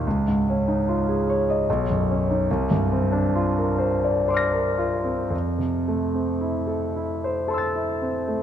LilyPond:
\new Staff \with { instrumentName = "Grand piano" } { \time 3/4 \key c \dorian \tempo 4 = 64 << { r2. | r2 <c''' d''' f''' bes'''>4 | r2 <a'' c''' e''' a'''>4 | } \\ { des,16 aes,16 des'16 ees'16 f'16 aes'16 des''16 ees''16 b,,16 fis,16 cis'16 dis'16 | c,16 g,16 c'16 d'16 f'16 bes'16 c''16 d''16 c''16 bes'16 f'16 c'16 | f,16 c16 a16 c'16 e'16 a'16 e'16 c''16 a'16 e'16 c'16 a16 | } >> }